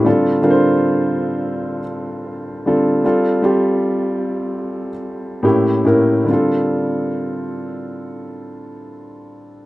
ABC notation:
X:1
M:4/4
L:1/8
Q:"Swing 16ths" 1/4=74
K:Dm
V:1 name="Grand piano"
[D,G,CFA] [D,G,CFBc]4 z2 [D,G,CFA] | [G,CFA] [G,CFG]4 z [A,,B,^CEG] [A,,B,CEB] | [D,G,CFA]8 |]